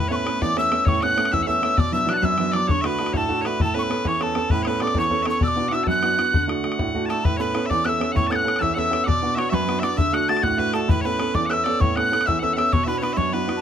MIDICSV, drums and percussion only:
0, 0, Header, 1, 2, 480
1, 0, Start_track
1, 0, Tempo, 304105
1, 2802, Time_signature, 12, 3, 24, 8
1, 21487, End_track
2, 0, Start_track
2, 0, Title_t, "Bodhran"
2, 420, Note_on_c, 9, 64, 65
2, 577, Note_off_c, 9, 64, 0
2, 659, Note_on_c, 9, 64, 76
2, 817, Note_off_c, 9, 64, 0
2, 896, Note_on_c, 9, 64, 57
2, 1054, Note_off_c, 9, 64, 0
2, 1133, Note_on_c, 9, 64, 66
2, 1291, Note_off_c, 9, 64, 0
2, 1366, Note_on_c, 9, 64, 81
2, 1523, Note_off_c, 9, 64, 0
2, 1615, Note_on_c, 9, 64, 63
2, 1773, Note_off_c, 9, 64, 0
2, 1857, Note_on_c, 9, 64, 64
2, 1978, Note_off_c, 9, 64, 0
2, 1978, Note_on_c, 9, 64, 59
2, 2106, Note_off_c, 9, 64, 0
2, 2106, Note_on_c, 9, 64, 82
2, 2222, Note_off_c, 9, 64, 0
2, 2222, Note_on_c, 9, 64, 26
2, 2344, Note_off_c, 9, 64, 0
2, 2344, Note_on_c, 9, 64, 27
2, 2502, Note_off_c, 9, 64, 0
2, 2574, Note_on_c, 9, 64, 64
2, 2732, Note_off_c, 9, 64, 0
2, 2807, Note_on_c, 9, 64, 81
2, 2964, Note_off_c, 9, 64, 0
2, 3295, Note_on_c, 9, 64, 64
2, 3453, Note_off_c, 9, 64, 0
2, 3521, Note_on_c, 9, 64, 77
2, 3679, Note_off_c, 9, 64, 0
2, 3752, Note_on_c, 9, 64, 58
2, 3909, Note_off_c, 9, 64, 0
2, 4000, Note_on_c, 9, 64, 64
2, 4158, Note_off_c, 9, 64, 0
2, 4250, Note_on_c, 9, 64, 76
2, 4408, Note_off_c, 9, 64, 0
2, 4482, Note_on_c, 9, 64, 63
2, 4640, Note_off_c, 9, 64, 0
2, 4713, Note_on_c, 9, 64, 52
2, 4835, Note_off_c, 9, 64, 0
2, 4835, Note_on_c, 9, 64, 51
2, 4952, Note_off_c, 9, 64, 0
2, 4952, Note_on_c, 9, 64, 72
2, 5084, Note_off_c, 9, 64, 0
2, 5084, Note_on_c, 9, 64, 24
2, 5203, Note_off_c, 9, 64, 0
2, 5203, Note_on_c, 9, 64, 24
2, 5361, Note_off_c, 9, 64, 0
2, 5445, Note_on_c, 9, 64, 56
2, 5603, Note_off_c, 9, 64, 0
2, 5681, Note_on_c, 9, 64, 72
2, 5839, Note_off_c, 9, 64, 0
2, 6168, Note_on_c, 9, 64, 51
2, 6326, Note_off_c, 9, 64, 0
2, 6393, Note_on_c, 9, 64, 67
2, 6551, Note_off_c, 9, 64, 0
2, 6641, Note_on_c, 9, 64, 51
2, 6799, Note_off_c, 9, 64, 0
2, 6869, Note_on_c, 9, 64, 56
2, 7027, Note_off_c, 9, 64, 0
2, 7101, Note_on_c, 9, 64, 71
2, 7259, Note_off_c, 9, 64, 0
2, 7339, Note_on_c, 9, 64, 57
2, 7497, Note_off_c, 9, 64, 0
2, 7580, Note_on_c, 9, 64, 58
2, 7692, Note_off_c, 9, 64, 0
2, 7692, Note_on_c, 9, 64, 52
2, 7808, Note_off_c, 9, 64, 0
2, 7808, Note_on_c, 9, 64, 72
2, 7931, Note_off_c, 9, 64, 0
2, 7931, Note_on_c, 9, 64, 22
2, 8060, Note_off_c, 9, 64, 0
2, 8060, Note_on_c, 9, 64, 24
2, 8218, Note_off_c, 9, 64, 0
2, 8295, Note_on_c, 9, 64, 53
2, 8453, Note_off_c, 9, 64, 0
2, 8538, Note_on_c, 9, 64, 70
2, 8695, Note_off_c, 9, 64, 0
2, 9020, Note_on_c, 9, 64, 55
2, 9178, Note_off_c, 9, 64, 0
2, 9261, Note_on_c, 9, 64, 67
2, 9418, Note_off_c, 9, 64, 0
2, 9512, Note_on_c, 9, 64, 54
2, 9669, Note_off_c, 9, 64, 0
2, 9767, Note_on_c, 9, 64, 61
2, 9925, Note_off_c, 9, 64, 0
2, 10010, Note_on_c, 9, 64, 78
2, 10168, Note_off_c, 9, 64, 0
2, 10250, Note_on_c, 9, 64, 62
2, 10407, Note_off_c, 9, 64, 0
2, 10481, Note_on_c, 9, 64, 54
2, 10602, Note_off_c, 9, 64, 0
2, 10602, Note_on_c, 9, 64, 48
2, 10721, Note_off_c, 9, 64, 0
2, 10721, Note_on_c, 9, 64, 68
2, 10850, Note_off_c, 9, 64, 0
2, 10850, Note_on_c, 9, 64, 24
2, 10969, Note_off_c, 9, 64, 0
2, 10969, Note_on_c, 9, 64, 25
2, 11126, Note_off_c, 9, 64, 0
2, 11209, Note_on_c, 9, 64, 56
2, 11366, Note_off_c, 9, 64, 0
2, 11443, Note_on_c, 9, 64, 73
2, 11600, Note_off_c, 9, 64, 0
2, 11913, Note_on_c, 9, 64, 60
2, 12070, Note_off_c, 9, 64, 0
2, 12162, Note_on_c, 9, 64, 69
2, 12320, Note_off_c, 9, 64, 0
2, 12402, Note_on_c, 9, 64, 53
2, 12560, Note_off_c, 9, 64, 0
2, 12649, Note_on_c, 9, 64, 56
2, 12807, Note_off_c, 9, 64, 0
2, 12889, Note_on_c, 9, 64, 71
2, 13047, Note_off_c, 9, 64, 0
2, 13140, Note_on_c, 9, 64, 59
2, 13298, Note_off_c, 9, 64, 0
2, 13389, Note_on_c, 9, 64, 60
2, 13512, Note_off_c, 9, 64, 0
2, 13512, Note_on_c, 9, 64, 54
2, 13619, Note_off_c, 9, 64, 0
2, 13619, Note_on_c, 9, 64, 65
2, 13734, Note_off_c, 9, 64, 0
2, 13734, Note_on_c, 9, 64, 22
2, 13859, Note_off_c, 9, 64, 0
2, 13859, Note_on_c, 9, 64, 23
2, 14017, Note_off_c, 9, 64, 0
2, 14098, Note_on_c, 9, 64, 55
2, 14256, Note_off_c, 9, 64, 0
2, 14342, Note_on_c, 9, 64, 70
2, 14499, Note_off_c, 9, 64, 0
2, 14813, Note_on_c, 9, 64, 56
2, 14971, Note_off_c, 9, 64, 0
2, 15048, Note_on_c, 9, 64, 67
2, 15206, Note_off_c, 9, 64, 0
2, 15291, Note_on_c, 9, 64, 55
2, 15449, Note_off_c, 9, 64, 0
2, 15519, Note_on_c, 9, 64, 62
2, 15676, Note_off_c, 9, 64, 0
2, 15760, Note_on_c, 9, 64, 73
2, 15918, Note_off_c, 9, 64, 0
2, 16005, Note_on_c, 9, 64, 64
2, 16163, Note_off_c, 9, 64, 0
2, 16246, Note_on_c, 9, 64, 64
2, 16362, Note_off_c, 9, 64, 0
2, 16362, Note_on_c, 9, 64, 52
2, 16469, Note_off_c, 9, 64, 0
2, 16469, Note_on_c, 9, 64, 73
2, 16587, Note_off_c, 9, 64, 0
2, 16587, Note_on_c, 9, 64, 26
2, 16707, Note_off_c, 9, 64, 0
2, 16707, Note_on_c, 9, 64, 26
2, 16865, Note_off_c, 9, 64, 0
2, 16946, Note_on_c, 9, 64, 61
2, 17104, Note_off_c, 9, 64, 0
2, 17192, Note_on_c, 9, 64, 87
2, 17349, Note_off_c, 9, 64, 0
2, 17670, Note_on_c, 9, 64, 66
2, 17828, Note_off_c, 9, 64, 0
2, 17909, Note_on_c, 9, 64, 77
2, 18067, Note_off_c, 9, 64, 0
2, 18167, Note_on_c, 9, 64, 60
2, 18325, Note_off_c, 9, 64, 0
2, 18403, Note_on_c, 9, 64, 62
2, 18561, Note_off_c, 9, 64, 0
2, 18647, Note_on_c, 9, 64, 81
2, 18805, Note_off_c, 9, 64, 0
2, 18899, Note_on_c, 9, 64, 63
2, 19057, Note_off_c, 9, 64, 0
2, 19151, Note_on_c, 9, 64, 57
2, 19270, Note_off_c, 9, 64, 0
2, 19270, Note_on_c, 9, 64, 51
2, 19388, Note_off_c, 9, 64, 0
2, 19388, Note_on_c, 9, 64, 73
2, 19510, Note_off_c, 9, 64, 0
2, 19510, Note_on_c, 9, 64, 22
2, 19626, Note_off_c, 9, 64, 0
2, 19626, Note_on_c, 9, 64, 23
2, 19784, Note_off_c, 9, 64, 0
2, 19863, Note_on_c, 9, 64, 56
2, 20021, Note_off_c, 9, 64, 0
2, 20095, Note_on_c, 9, 64, 74
2, 20252, Note_off_c, 9, 64, 0
2, 20573, Note_on_c, 9, 64, 56
2, 20731, Note_off_c, 9, 64, 0
2, 20805, Note_on_c, 9, 64, 77
2, 20963, Note_off_c, 9, 64, 0
2, 21291, Note_on_c, 9, 64, 56
2, 21449, Note_off_c, 9, 64, 0
2, 21487, End_track
0, 0, End_of_file